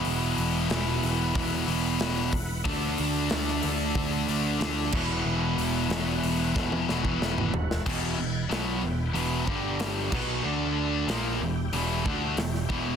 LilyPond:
<<
  \new Staff \with { instrumentName = "Tonewheel organ" } { \time 4/4 \key d \major \tempo 4 = 92 << { fis''1 | e''2.~ e''8 fis''8~ | fis''1 | \key e \minor g''2.~ g''8 g''8 |
a''4 g''2. | } \\ { <e' b'>1 | <d' a'>2.~ <d' a'>8 <e' b'>8~ | <e' b'>1 | <e' b'>2~ <e' b'>8 <d' g'>4 <e' b'>8 |
<d' a'>4 <e' g'>2. | } >> }
  \new Staff \with { instrumentName = "Distorted electric guitar" } { \clef bass \time 4/4 \key d \major <e, b, e>2 <e, b, e>8 <e, b, e>4 r8 | <d a d'>2~ <d a d'>8 <d a d'>8 <d a d'>8 <e, b, e>8~ | <e, b, e>2 <e, b, e>8 <e, b, e>4 r8 | \key e \minor <e, b, e>8 <e, b,>8 <b, fis b>8 <e, b,>8 <e, b, e>8 <g, d g>4 <b, fis b>8 |
<d a d'>4 <ais, f ais>8 <e, b,>8 <e, b, e>8 <d a d'>8 <e, b,>8 <e, b, e>8 | }
  \new Staff \with { instrumentName = "Overdriven electric guitar" } { \clef bass \time 4/4 \key d \major <e, b, e>4 <e, b, e>4. <e, b, e>4 r8 | <d a d'>4. <d a d'>4. <d a d'>8 <e, b, e>8~ | <e, b, e>4 <e, b, e>4. <e, b, e>4 r8 | \key e \minor <e, b, e>8 <e, b,>8 <b, fis b>8 <e, b,>8 <e, b, e>8 <g, d g>4 <b, fis b>8 |
<d a d'>4 <ais, f ais>8 <e, b,>8 <e, b, e>8 <d a d'>8 <e, b,>8 <e, b, e>8 | }
  \new Staff \with { instrumentName = "Overdriven electric guitar" } { \clef bass \time 4/4 \key d \major <e, b, e>2.~ <e, b, e>8 r8 | <d a d'>2.~ <d a d'>8 <e, b, e>8~ | <e, b, e>2.~ <e, b, e>8 r8 | \key e \minor <e, b, e>8 <e, b,>8 <b, fis b>8 <e, b,>8 <e, b, e>8 <g, d g>4 <b, fis b>8 |
<d a d'>4 <ais, f ais>8 <e, b,>8 <e, b, e>8 <d a d'>8 <e, b,>8 <e, b, e>8 | }
  \new Staff \with { instrumentName = "Picked electric bass" } { \clef bass \time 4/4 \key d \major e,,8 e,,8 e,,8 e,,8 e,,8 e,,8 e,,8 e,,8 | d,8 d,8 d,8 d,8 d,8 d,8 d,8 e,,8 | e,,8 e,,8 e,,8 e,,8 r8 e,,8 e,,8 e,,8 | \key e \minor e,,8 e,,8 b,,8 e,,8 e,,8 g,,4 b,,8 |
d,4 ais,,8 e,,8 e,,8 d,8 e,,8 e,,8 | }
  \new DrumStaff \with { instrumentName = "Drums" } \drummode { \time 4/4 hho8 hho8 <hho sn>8 hho8 <hho bd>8 hho8 <hho sn>8 <hho bd>8 | <hho bd>8 hho8 <hho sn>16 sn16 hho8 <hho bd>8 hho8 <hho sn>8 <cymc bd>8 | r8 hho8 <hho sn>8 hho8 <bd sn>16 tommh16 sn16 bd16 sn16 toml16 tomfh16 sn16 | <cymc bd>4 <hho sn>4 hho8 bd8 <hho sn>8 <cymc bd>8 |
r4 <hho sn>4 hho8 bd8 <hho sn>16 sn16 bd8 | }
>>